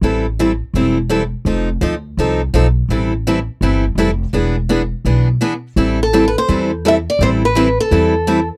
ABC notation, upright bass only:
X:1
M:4/4
L:1/8
Q:"Swing" 1/4=167
K:Am
V:1 name="Upright bass" clef=bass
A,,,4 E,,,4 | F,,,2 D,,2 C,,2 B,,,2 | A,,,4 G,,,2 F,,,2 | E,,,4 B,,,2 z2 |
A,,,4 E,,4 | A,,,4 E,,4 |]